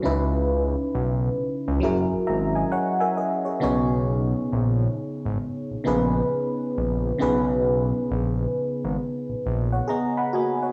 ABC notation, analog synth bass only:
X:1
M:4/4
L:1/16
Q:"Swing 16ths" 1/4=67
K:B
V:1 name="Analog synth bass" clef=bass
C,,4 B,,,2 z C,, F,,, G,,, G,,,2 z4 | B,,,4 A,,,2 z G,,, z A,,, A,,,2 z2 A,,,2 | B,,,4 A,,,2 z G,,, z A,,, A,,,2 z4 |]